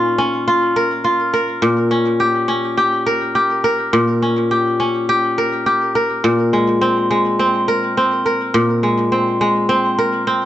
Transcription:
0.00 1.61 A#2 medium
0.00 0.18 C#4 medium
0.00 0.37 D#4 medium
0.00 0.47 F4 medium
0.00 0.75 A#4 medium
0.18 1.91 C#4 medium
0.48 1.04 F4 medium
0.76 1.33 A#4 medium
1.04 2.56 F4 medium
1.34 2.61 A#4 medium
1.62 3.92 A#2 medium
1.91 2.48 C#4 medium
2.20 2.77 G4 medium
2.48 4.22 C#4 medium
2.77 3.35 G4 medium
3.06 3.64 A#4 medium
3.35 4.51 G4 medium
3.64 5.37 A#4 medium
3.93 6.23 A#2 medium
4.22 4.79 C#4 medium
4.51 5.09 G4 medium
4.80 6.54 C#4 medium
5.09 5.66 G4 medium
5.38 5.95 A#4 medium
5.66 6.59 G4 medium
5.95 7.23 A#4 medium
6.24 8.53 A#2 medium
6.53 7.10 G#3 medium
6.81 7.39 C4 medium
7.11 8.83 G#3 medium
7.39 7.97 C4 medium
7.68 8.25 A#4 medium
7.97 9.12 C4 medium
8.26 9.97 A#4 medium
8.54 10.45 A#2 medium
8.83 9.40 G#3 medium
9.12 9.69 C4 medium
9.41 10.45 G#3 medium
9.69 10.27 C4 medium
9.99 10.45 A#4 medium
10.27 10.45 C4 medium

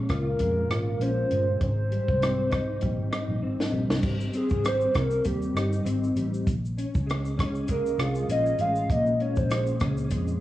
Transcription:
0.00 1.60 A#2 medium
0.00 0.39 G#3 medium
0.00 1.00 C#4 medium
0.09 0.34 C#2 medium
0.09 0.69 F4 medium
0.09 1.04 A#4 loud
0.09 kick medium
0.09 cross-stick medium
0.09 closed hi-hat soft
0.39 0.64 F2 medium
0.39 1.30 G#3 medium
0.39 kick medium
0.39 closed hi-hat medium
0.70 0.94 G#1 medium
0.70 1.68 F4 medium
0.70 cross-stick medium
0.70 closed hi-hat soft
1.00 1.24 A#1 medium
1.00 1.68 C#4 medium
1.00 1.62 C5 loud
1.00 closed hi-hat medium
1.31 1.55 G1 medium
1.31 1.90 G#3 medium
1.31 closed hi-hat soft
1.61 1.98 G#1 medium
1.61 4.03 G#2 medium
1.61 3.40 C5 loud
1.61 kick loud
1.61 closed hi-hat medium
1.91 2.81 G3 medium
1.91 closed hi-hat soft
2.08 2.79 C2 medium
2.08 kick medium
2.21 3.42 C4 medium
2.21 cross-stick medium
2.21 closed hi-hat medium
2.50 3.10 D#4 medium
2.50 kick medium
2.50 cross-stick medium
2.50 closed hi-hat soft
2.81 2.96 A#1 medium
2.81 3.72 G3 medium
2.81 kick medium
2.81 closed hi-hat medium
2.98 3.09 G#1 medium
3.11 5.55 D#4 medium
3.11 cross-stick medium
3.11 closed hi-hat soft
3.28 3.39 A#1 medium
3.42 3.56 G#1 medium
3.42 4.33 C4 medium
3.60 snare medium
3.72 3.86 A#1 medium
3.72 4.63 G3 soft
3.88 4.00 C2 medium
3.88 snare medium
4.03 4.28 G#1 medium
4.03 kick loud
4.03 crash medium
4.21 shaker soft
4.33 4.93 C4 medium
4.33 4.69 G#4 medium
4.33 closed hi-hat soft
4.33 shaker soft
4.49 4.86 G#1 medium
4.49 kick medium
4.49 shaker soft
4.63 5.24 G3 medium
4.63 4.97 C5 loud
4.63 cross-stick medium
4.63 closed hi-hat medium
4.63 shaker medium
4.81 shaker soft
4.94 5.19 C2 medium
4.94 5.84 C4 medium
4.94 5.28 A#4 medium
4.94 kick medium
4.94 cross-stick medium
4.94 closed hi-hat soft
4.94 shaker soft
5.11 shaker soft
5.25 5.49 D#2 medium
5.25 6.15 G3 medium
5.25 6.17 G4 medium
5.25 kick medium
5.25 closed hi-hat medium
5.25 shaker medium
5.42 shaker medium
5.54 5.79 G1 medium
5.54 6.53 D#4 medium
5.54 cross-stick medium
5.54 closed hi-hat soft
5.54 shaker soft
5.73 shaker soft
5.85 6.10 G#1 medium
5.85 6.53 C4 medium
5.85 closed hi-hat medium
5.85 shaker medium
6.04 shaker soft
6.16 6.40 A1 medium
6.16 6.53 G3 medium
6.16 closed hi-hat soft
6.16 shaker soft
6.34 shaker medium
6.47 6.84 A#1 medium
6.47 kick loud
6.47 closed hi-hat medium
6.47 shaker medium
6.65 shaker soft
6.77 7.37 C#4 medium
6.77 closed hi-hat soft
6.77 shaker soft
6.94 7.95 C#2 medium
6.94 kick medium
6.94 shaker soft
7.06 7.68 G#3 medium
7.06 closed hi-hat medium
7.06 shaker medium
7.11 cross-stick medium
7.25 shaker soft
7.38 8.29 C#4 medium
7.38 kick medium
7.38 cross-stick medium
7.38 closed hi-hat soft
7.38 shaker soft
7.55 shaker medium
7.68 8.58 G#3 medium
7.68 8.01 A#4 medium
7.68 kick medium
7.68 closed hi-hat medium
7.68 shaker medium
7.86 shaker medium
7.98 8.22 C2 medium
7.98 10.40 F4 medium
7.98 8.29 G#4 medium
7.98 cross-stick medium
7.98 closed hi-hat medium
7.98 shaker medium
8.15 shaker soft
8.29 8.53 A#1 medium
8.29 9.20 C#4 medium
8.29 8.62 D#5 medium
8.29 closed hi-hat medium
8.29 shaker medium
8.46 shaker soft
8.58 8.83 A1 medium
8.58 9.49 G#3 medium
8.58 8.93 F5 loud
8.58 closed hi-hat medium
8.58 shaker soft
8.75 shaker soft
8.89 9.14 A#1 loud
8.89 10.40 A#2 medium
8.89 9.23 D#5 loud
8.89 kick loud
8.89 closed hi-hat medium
8.89 shaker medium
9.06 shaker soft
9.20 9.80 C#4 medium
9.20 9.39 C#5 medium
9.20 closed hi-hat soft
9.20 shaker soft
9.36 9.72 A#1 medium
9.36 9.98 C5 medium
9.36 kick medium
9.36 shaker soft
9.49 10.11 G#3 medium
9.49 cross-stick medium
9.49 closed hi-hat medium
9.49 shaker medium
9.66 shaker soft
9.80 10.13 C#2 medium
9.80 10.40 C#4 medium
9.80 kick medium
9.80 cross-stick medium
9.80 closed hi-hat soft
9.80 shaker medium
9.97 shaker medium
10.11 10.35 F2 medium
10.11 10.40 G#3 medium
10.11 kick medium
10.11 closed hi-hat medium
10.11 shaker medium
10.28 shaker medium

